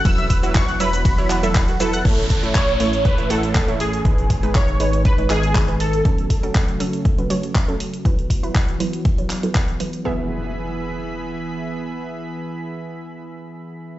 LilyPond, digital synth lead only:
\new Staff \with { instrumentName = "Digital synth lead" } { \time 4/4 \key e \major \tempo 4 = 120 e'''4 cis'''8 b''2 a'8~ | a'4 cis''4 b'8 a'4 gis'8~ | gis'4 cis''4 b'8 gis'4 a'8~ | a'4 r2. |
r1 | r1 | r1 | }